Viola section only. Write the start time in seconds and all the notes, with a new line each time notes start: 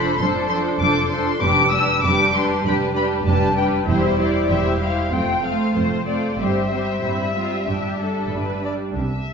Already playing: F3 D4
0.20 F3 D4
0.51 F3 D4
0.82 F3 D4
1.11 F3 D4
1.42 G3 D4
1.73 G3 D4
2.04 G3 D4
2.36 G3 D4
2.66 G3 D4
2.96 G3 D4
3.28 G3 D4
3.58 G3 D4
3.89 G3 E4
4.19 G3 E4
4.50 G3 E4
4.80 G3 E4
5.12 A3 C4
5.43 A3 C4
5.74 A3 C4
6.06 A3 C4
6.38 G3 C4
6.70 G3 C4
7.03 G3 C4
7.37 G3 C4
7.68 G3 D4
8.00 G3 D4
8.32 G3 D4
8.64 G3 D4